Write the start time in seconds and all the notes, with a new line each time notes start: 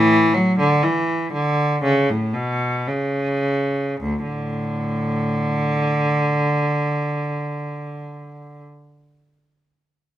Already playing: A2 E3
0.34 F#3
0.59 D3
0.83 E3
1.33 D3
1.83 C#3
2.10 A2
2.34 B2
2.88 C#3
4.01 D2
4.23 A2 D3